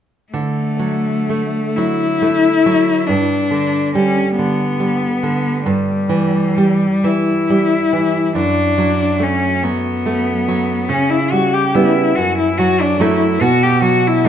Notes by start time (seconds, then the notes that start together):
0.33 D3 A3
0.79 F#3
1.29 A3
1.76 F#3 E4
2.22 A3
2.66 F#3
3.07 G2 D4
3.51 D3
3.94 G3 C#4
4.36 D3 B3
4.80 G3
5.23 D3
5.65 G2 G3
6.09 E3
6.57 G3
7.04 E3 E4
7.50 G3
7.93 E3
8.35 F#2 D4
8.78 F#3
9.19 A3 C#4
9.63 F#3 B3
10.06 A3
10.48 F#3
10.89 C#3 C#4
11.10 E4
11.31 G3 F#4
11.54 G4
11.75 G3 B3 E4
12.15 F#2 F#4
12.38 E4
12.58 F#3 F#4
12.81 D4
13.00 F#3 A3 E4
13.41 B2 F#4
13.63 G4
13.82 F#3 F#4
14.07 E4
14.25 F#3 A3